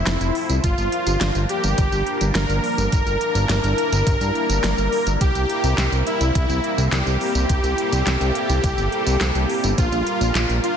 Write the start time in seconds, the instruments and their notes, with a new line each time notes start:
Already playing: analog synth pad F3 A3 C4 E4 C5, supersaw synth E4
0.07 analog synth bass F1, snare, closed hi-hat, tambourine
0.21 analog synth bass F1, closed hi-hat, tambourine
0.35 open hi-hat
0.49 analog synth bass C2, closed hi-hat, tambourine
0.64 analog synth bass G1, analog synth pad G3 A#3 D4 A#4, supersaw synth F4, kick, closed hi-hat, tambourine
0.78 analog synth bass G1, closed hi-hat, tambourine
0.92 closed hi-hat
1.07 analog synth bass G1, closed hi-hat, tambourine
1.21 analog synth bass G1, snare, closed hi-hat, tambourine
1.35 analog synth bass G1, closed hi-hat, tambourine
1.49 supersaw synth G4, closed hi-hat
1.64 analog synth bass G1, closed hi-hat, tambourine
1.78 analog synth bass G1, kick, closed hi-hat, tambourine
1.92 analog synth bass G1, closed hi-hat, tambourine
2.07 closed hi-hat
2.21 analog synth bass G1, closed hi-hat, tambourine
2.35 analog synth bass G1, supersaw synth A#4, snare, closed hi-hat, tambourine
2.49 analog synth bass G1, closed hi-hat, tambourine
2.64 open hi-hat
2.78 analog synth bass G1, closed hi-hat, tambourine
2.92 analog synth bass G1, analog synth pad E4, kick, closed hi-hat, tambourine
3.06 analog synth bass G1, closed hi-hat, tambourine
3.21 closed hi-hat
3.35 analog synth bass G1, closed hi-hat, tambourine
3.49 analog synth bass G1, snare, closed hi-hat, tambourine
3.64 analog synth bass G1, closed hi-hat, tambourine
3.78 closed hi-hat
3.92 analog synth bass G1, closed hi-hat, tambourine
4.07 analog synth bass G1, kick, closed hi-hat, tambourine
4.21 analog synth bass G2, closed hi-hat, tambourine
4.35 closed hi-hat
4.49 analog synth bass G1, closed hi-hat, tambourine
4.64 analog synth bass G1, snare, closed hi-hat, tambourine
4.78 analog synth bass G1, closed hi-hat, tambourine
4.92 open hi-hat
5.07 analog synth bass G1, closed hi-hat, tambourine
5.21 analog synth bass C2, analog synth pad C4 E4, supersaw synth G4, kick, closed hi-hat, tambourine
5.35 analog synth bass C2, closed hi-hat, tambourine
5.50 closed hi-hat
5.64 analog synth bass C2, closed hi-hat, tambourine
5.78 analog synth bass C2, snare, clap, closed hi-hat, tambourine
5.92 analog synth bass C2, closed hi-hat, tambourine
6.07 supersaw synth E4, closed hi-hat
6.21 analog synth bass C2, closed hi-hat, tambourine
6.35 analog synth bass C2, kick, closed hi-hat, tambourine
6.49 analog synth bass C2, closed hi-hat, tambourine
6.64 closed hi-hat
6.78 analog synth bass C2, closed hi-hat, tambourine
6.92 analog synth bass C2, supersaw synth G4, snare, clap, closed hi-hat, tambourine
7.06 analog synth bass C2, closed hi-hat, tambourine
7.21 open hi-hat
7.35 analog synth bass C2, closed hi-hat, tambourine
7.49 analog synth bass C2, analog synth pad A4, kick, closed hi-hat, tambourine
7.64 analog synth bass C2, closed hi-hat, tambourine
7.78 closed hi-hat
7.92 analog synth bass C2, closed hi-hat, tambourine
8.07 analog synth bass C2, snare, clap, closed hi-hat, tambourine
8.21 analog synth bass C2, closed hi-hat, tambourine
8.35 closed hi-hat
8.49 analog synth bass C2, closed hi-hat, tambourine
8.64 analog synth bass C2, kick, closed hi-hat, tambourine
8.78 analog synth bass G1, closed hi-hat, tambourine
8.92 closed hi-hat
9.06 analog synth bass C2, closed hi-hat, tambourine
9.21 analog synth bass C2, snare, clap, closed hi-hat, tambourine
9.35 analog synth bass C2, closed hi-hat, tambourine
9.49 open hi-hat
9.64 analog synth bass G1, closed hi-hat, tambourine
9.78 analog synth bass A#1, analog synth pad D4 F4 A#4, supersaw synth F4, kick, closed hi-hat, tambourine
9.92 analog synth bass A#1, closed hi-hat, tambourine
10.07 closed hi-hat
10.21 analog synth bass A#1, closed hi-hat, tambourine
10.35 analog synth bass A#1, snare, clap, closed hi-hat, tambourine
10.49 analog synth bass A#1, closed hi-hat, tambourine
10.64 supersaw synth F4, closed hi-hat